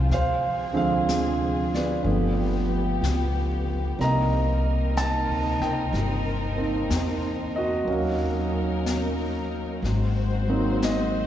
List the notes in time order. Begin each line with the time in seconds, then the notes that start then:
Already playing: F3 G#3 C4 F5 G5 G#5
0.09 D2 C4 G#4 F5, brush sweep, snare
0.14 C5
0.73 D3 F3 G#3 C4 F5
1.09 brush sweep, snare, hi-hat pedal
1.74 B4 D5, snare
2.02 G1 F3 A3 D4 G4
2.07 F3 B3, brush sweep
3.02 C#2, brush sweep, snare, hi-hat pedal
3.99 C2 C3 G3 A#3 C4 D#4 A#4 A#5, brush sweep, snare
4.04 D#5
4.97 A5, brush sweep, snare, hi-hat pedal
5.28 D2
5.60 C#2 D#5 G5, snare
5.93 G1, brush sweep, snare
6.56 A#3 C4 D#4
6.90 E2, brush sweep, snare, hi-hat pedal
7.56 F#4 D#5
7.85 D#2 F#3 A#3 C#4, brush sweep
7.89 F#3 C#4 D#4 A#4 F5
8.86 brush sweep, snare, hi-hat pedal
9.82 G#1 G#3 C4 F#4 C5, brush sweep, snare
10.48 F#3 A#3 C4 D#4
10.82 D#5, brush sweep, snare, hi-hat pedal